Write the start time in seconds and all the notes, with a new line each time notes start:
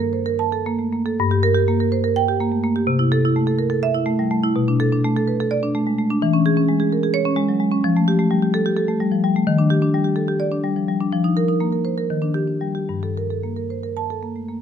Already playing: G2
0.00 A#4
0.13 C5
0.26 A#4
0.39 A5
0.52 A4
0.66 A#3
0.79 A3
0.93 A#3
1.06 A4
1.19 G2
1.31 G4
1.43 A#4
1.55 G4
1.68 A#3
1.80 A#4
1.92 C5
2.04 A#4
2.16 G5
2.28 G4
2.40 A#3
2.52 A3
2.64 A#3
2.76 G4
2.87 C3
2.99 E4
3.12 A4
3.25 E4
3.36 A3
3.47 A4
3.59 A#4
3.70 A4
3.83 E5
3.94 E4
4.06 A3
4.19 G3
4.31 A3
4.43 E4
4.56 B2
4.68 D4
4.80 A4
4.92 D4
5.04 A3
5.17 A4
5.28 B4
5.40 A4
5.51 D5
5.63 D4
5.75 A3
5.87 G#3
5.98 A3
6.10 D4
6.22 E3
6.34 C#4
6.46 G#4
6.57 C#4
6.69 G#3
6.80 G#4
6.92 A#4
7.03 G#4
7.14 C#5
7.25 C#4
7.36 G#3
7.49 F#3
7.60 G#3
7.72 C#4
7.84 F3
7.97 A3
8.08 G4
8.19 A3
8.31 G3
8.42 G4
8.54 A4
8.66 G4
8.77 A4
8.88 A3
9.00 G3
9.12 F3
9.24 G3
9.36 A3
9.47 D#3
9.58 D4
9.70 G4
9.82 D4
9.94 G3
10.04 G4
10.16 A4
10.28 G4
10.40 D5
10.51 D4
10.64 G3
10.76 F3
10.88 G3
11.00 D4
11.12 F3
11.24 D#4
11.37 A#4
11.48 D#4
11.60 A#3
11.72 A#4
11.85 C5
11.98 A#4
12.10 D#3
12.22 D4
12.34 G4
12.48 D4
12.61 G3
12.75 G4
12.89 G2
13.03 A4
13.17 A#4
13.30 A4
13.43 A#3
13.56 A#4
13.70 C5
13.83 A#4
13.97 A5
14.10 A4
14.23 A#3
14.36 A3
14.49 A#3